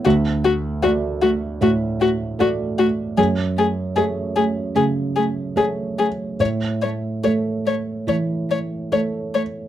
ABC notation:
X:1
M:4/4
L:1/8
Q:1/4=75
K:A
V:1 name="Violin"
F F F F F F F F | G G G G G G G G | c c c c c c c c |]
V:2 name="Felt piano"
D,,2 [A,Fd]2 A,,2 [A,Fd]2 | F,,2 [A,Gc]2 C,2 [A,Gc]2 | A,,2 [A,Ac]2 E,2 [A,Ac]2 |]
V:3 name="Cello"
A, A, A, A, A, A, A, A, | A, A, A, A, A, A, A, A, | A, A, A, A, A, A, A, A, |]